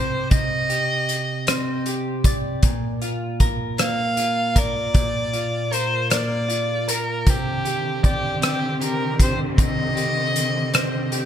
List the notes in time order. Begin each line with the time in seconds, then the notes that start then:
Already playing: C3 C4 G4 C5 D5
0.31 C3 D#5, kick, closed hi-hat
0.70 G4, closed hi-hat
1.09 closed hi-hat
1.47 C4, cross-stick, closed hi-hat
1.86 G4, closed hi-hat
2.24 D5, kick, closed hi-hat
2.63 A#2, kick, closed hi-hat
3.02 F4, closed hi-hat
3.40 A#4, kick, closed hi-hat
3.78 A#3 F5, cross-stick, closed hi-hat
4.17 F4, closed hi-hat
4.56 A#4 D5, kick, closed hi-hat
4.94 A#2, kick, closed hi-hat
5.33 F4, closed hi-hat
5.72 A#4 C5, closed hi-hat
6.10 A#3 D5, cross-stick, closed hi-hat
6.48 F4, closed hi-hat
6.88 A#4, closed hi-hat
7.27 C3 D3 D#3 C4 G4, kick, closed hi-hat
7.65 G4, closed hi-hat
8.03 G4 D5, kick, closed hi-hat
8.42 C4 G4, cross-stick, closed hi-hat
8.81 G4 A#4, closed hi-hat
9.20 C5, kick, closed hi-hat
9.58 C3 D#5, kick, closed hi-hat
9.95 G4, closed hi-hat
10.36 closed hi-hat
10.74 C4, cross-stick, closed hi-hat
11.12 G4, closed hi-hat